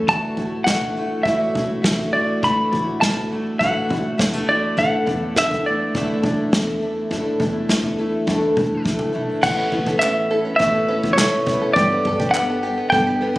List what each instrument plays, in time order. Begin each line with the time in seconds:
Already playing: steel-string acoustic guitar E3 A3 E4
0.08 upright bass D2, steel-string acoustic guitar D2 F#4, twelve-string acoustic guitar D3 E3 A3 E4 F#4, clean electric guitar A5, kick, floor tom
0.37 upright bass A1, twelve-string acoustic guitar E4 F#4, steel-string acoustic guitar F#4, floor tom
0.41 twelve-string acoustic guitar A3
0.64 steel-string acoustic guitar D3, twelve-string acoustic guitar E3, clean electric guitar F#5, kick, snare
0.69 twelve-string acoustic guitar A3 E4 F#4
0.81 floor tom
0.97 steel-string acoustic guitar A3, twelve-string acoustic guitar A3 E4 F#4
1.23 upright bass A1, steel-string acoustic guitar A2, twelve-string acoustic guitar D3 E3 A3, clean electric guitar E5, kick, floor tom
1.27 twelve-string acoustic guitar E4 F#4, steel-string acoustic guitar F#4
1.55 twelve-string acoustic guitar A3 E4 F#4, steel-string acoustic guitar F#4, floor tom, mid tom
1.84 upright bass A1, steel-string acoustic guitar D3 A3, twelve-string acoustic guitar E3 A3 E4 F#4, kick, snare
1.98 floor tom
2.13 twelve-string acoustic guitar A3 E4 F#4, steel-string acoustic guitar F#4, clean electric guitar D5
2.43 steel-string acoustic guitar D2 F#4, upright bass D2, twelve-string acoustic guitar D3 E3 A3 E4 F#4, clean electric guitar B5, kick, floor tom
2.72 upright bass A1, twelve-string acoustic guitar A3 E4 F#4, steel-string acoustic guitar F#4, floor tom
3.01 steel-string acoustic guitar D3, twelve-string acoustic guitar E3 A3 E4 F#4, clean electric guitar A5, kick, snare
3.17 floor tom
3.32 steel-string acoustic guitar A3, twelve-string acoustic guitar A3 E4 F#4
3.59 upright bass A1, steel-string acoustic guitar A2 F#4, twelve-string acoustic guitar D3 E3 A3 E4 F#4, clean electric guitar F#5, kick, floor tom
3.89 twelve-string acoustic guitar A3 E4 F#4, steel-string acoustic guitar F#4, floor tom, mid tom
4.18 upright bass E2, steel-string acoustic guitar D3 G3, twelve-string acoustic guitar E3 A3 E4 F#4, kick, snare
4.33 steel-string acoustic guitar A3, floor tom
4.49 twelve-string acoustic guitar A3 E4 F#4, steel-string acoustic guitar F#4, clean electric guitar D5
4.77 upright bass A1, twelve-string acoustic guitar A2 D3 E3 A3 E4 A4, steel-string acoustic guitar A2 D4, clean electric guitar F#5, kick, floor tom
5.06 upright bass E2, twelve-string acoustic guitar E3 A3 E4 A4, steel-string acoustic guitar D4, floor tom
5.36 steel-string acoustic guitar D3, twelve-string acoustic guitar E3 A3 E4 A4, clean electric guitar E5, kick, snare
5.51 floor tom
5.66 twelve-string acoustic guitar E3 A3 E4 A4, steel-string acoustic guitar A3, clean electric guitar D5
5.94 upright bass E2, steel-string acoustic guitar E2 D4, twelve-string acoustic guitar A2 D3 E3 A3 E4 A4, kick, floor tom
6.23 twelve-string acoustic guitar E3 A3 E4 A4, steel-string acoustic guitar D4, floor tom, mid tom
6.52 upright bass E2, steel-string acoustic guitar D3 A3, twelve-string acoustic guitar E3 A3 E4 A4, kick, snare
6.67 floor tom
6.81 twelve-string acoustic guitar E3 A3 E4 A4, steel-string acoustic guitar D4
7.11 upright bass A1, twelve-string acoustic guitar A2 D3 E3 A3 E4 A4, steel-string acoustic guitar A2 D4, kick, floor tom
7.40 upright bass E2, twelve-string acoustic guitar E3 A3 E4 A4, steel-string acoustic guitar D4, floor tom, mid tom
7.69 steel-string acoustic guitar D3, twelve-string acoustic guitar E3 A3 E4 A4, kick, snare
7.83 floor tom
7.98 twelve-string acoustic guitar E3 A3 E4 A4, steel-string acoustic guitar A3
8.27 steel-string acoustic guitar E2 D4, upright bass E2, twelve-string acoustic guitar A2 D3 E3 A3 E4 A4, kick, floor tom
8.56 twelve-string acoustic guitar E3 A3 E4 A4, steel-string acoustic guitar D4, floor tom, mid tom
8.84 upright bass D2, steel-string acoustic guitar D3 A3, twelve-string acoustic guitar E3 A3 E4 A4, kick
8.99 upright bass C#2, floor tom
9.13 upright bass B1, twelve-string acoustic guitar E3 A3 E4 A4, steel-string acoustic guitar D4
9.29 upright bass A1
9.42 upright bass A1, twelve-string acoustic guitar A3 C#4 E4 B4, five-string banjo A4, clean electric guitar F#5, kick, floor tom, crash
9.58 five-string banjo C#4
9.71 upright bass A1, five-string banjo B3, twelve-string acoustic guitar C#4 E4 B4, floor tom
9.86 five-string banjo A4, floor tom
9.99 twelve-string acoustic guitar A3 C#4 E4 B4, five-string banjo C#4, clean electric guitar E5, clap
10.30 twelve-string acoustic guitar C#4 E4 B4, five-string banjo A4
10.45 five-string banjo C#4
10.56 upright bass A1, twelve-string acoustic guitar A3, five-string banjo B3, clean electric guitar E5, kick, floor tom
10.60 twelve-string acoustic guitar C#4 E4 B4
10.75 five-string banjo A4
10.88 five-string banjo C#4, twelve-string acoustic guitar C#4 E4 B4
11.03 five-string banjo B3, floor tom
11.13 clean electric guitar C#5
11.17 twelve-string acoustic guitar A3 C#4 E4 B4, five-string banjo A4, snare, clap, mid tom
11.32 five-string banjo C#4
11.46 five-string banjo B3, twelve-string acoustic guitar C#4 E4 B4, kick, floor tom, mid tom
11.62 five-string banjo A4
11.73 upright bass G1, twelve-string acoustic guitar G3 B3, five-string banjo G4, clean electric guitar D5, kick, floor tom
11.78 twelve-string acoustic guitar D4 A4
11.92 five-string banjo B3
12.05 upright bass G1, twelve-string acoustic guitar D4 A4, five-string banjo A4, floor tom
12.10 twelve-string acoustic guitar B3
12.20 five-string banjo G4, floor tom
12.31 clean electric guitar F#5, clap
12.35 twelve-string acoustic guitar G3 B3 D4 A4, five-string banjo B3
12.50 five-string banjo A4
12.63 twelve-string acoustic guitar D4 A4, five-string banjo G4
12.68 twelve-string acoustic guitar B3
12.78 five-string banjo B3
12.90 upright bass G1, twelve-string acoustic guitar G3 B3 D4 A4, five-string banjo A4, clean electric guitar G5, kick, floor tom
13.07 five-string banjo G4
13.21 five-string banjo B3, twelve-string acoustic guitar B3 D4 A4